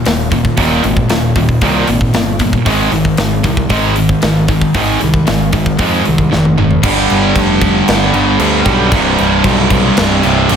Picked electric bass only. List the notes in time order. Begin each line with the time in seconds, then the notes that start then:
0.06 D#1
0.58 D#1
0.84 G#1
1.10 D#1
1.36 D#1
1.62 C2
1.89 G#1
2.14 G1
2.66 G#1
2.92 G#1
3.18 G#1
3.45 C2
3.70 G#1
4.23 G#1
4.75 G#1
5.03 C2
5.28 G#1
5.53 G#1
5.79 F2
6.08 C2
6.33 F1
6.83 G1
7.11 G1
7.36 F1
7.89 G1
8.13 G1
8.40 D2
8.66 B1
8.92 C1
9.20 C1
9.45 B1
9.99 C1
10.24 C1
10.50 G1